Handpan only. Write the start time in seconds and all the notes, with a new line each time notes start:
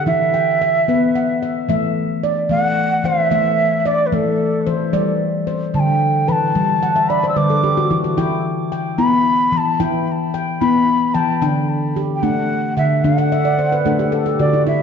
Already playing: G4 A4
0.06 E3 E4
0.34 G5
0.62 E5
0.88 B3 B4
1.15 F#5
1.43 E5
1.69 E3 A3 E5
2.23 D5
2.49 E3 A3
3.04 E3 C5
3.31 E3 A3 E5
3.86 D5
4.12 E3 A3
4.67 E3 C5
4.93 E3 G3 D5
5.47 C5
5.74 D3 G3
6.28 E3 B4
6.55 E3 G3
6.83 F#5
6.96 E5
7.10 D5
7.24 C5
7.36 D3 G3 B4
7.50 A4
7.63 G4
7.77 F#4
7.90 E3 E4
8.04 F#4
8.17 E3 E4 G5
8.72 G5
8.98 B3 E4
9.52 E3
9.80 E3 E4 G5
10.34 G5
10.61 B3 E4
11.14 E3 G5
11.42 D3 D4 G5
11.96 G4
12.23 A3 D4
12.77 D3 F#5
13.04 D3 D4
13.18 F#5
13.32 E5
13.45 D5
13.59 C5
13.72 B4
13.85 A3 D4 A4
13.99 G4
14.12 A4
14.26 G4
14.39 D3 F#4
14.53 E4
14.67 E4